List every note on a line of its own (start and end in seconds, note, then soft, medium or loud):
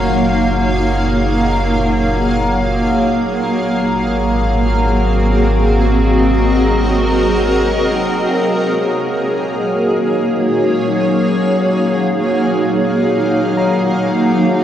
0.00 3.40 F#1 medium
0.00 8.29 F#3 medium
0.00 5.39 A#3 medium
0.00 4.44 D#4 medium
0.00 14.64 G#4 medium
0.00 3.45 C#5 medium
0.00 5.39 F5 medium
3.43 8.26 G#1 medium
3.43 8.31 C4 medium
3.79 8.32 F#4 medium
4.86 10.08 D#5 medium
5.33 9.19 A#4 medium
8.30 14.64 F#3 medium
8.30 14.64 A#3 medium
8.30 12.05 F5 medium
8.73 14.64 D#4 medium
8.80 14.64 F5 medium
9.26 14.09 C#5 medium
13.57 14.64 A#5 medium
13.86 14.64 C5 medium